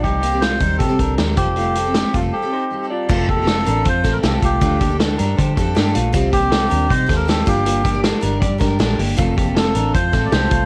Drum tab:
CC |--------|--------|x-------|--------|
HH |xxxxxxxx|xxxx----|-xxxxxxx|xxxxxxxx|
SD |--o---o-|--o-----|--o--oo-|--o---o-|
BD |o--ooo-o|---o----|oo--oo-o|oo--oo--|

CC |--------|--------|--------|
HH |xxxxxxxx|xxxxxxxo|xxxxxxxx|
SD |--o--oo-|--o--oo-|--o--oo-|
BD |oo--oo-o|-o--oo--|oo--oo-o|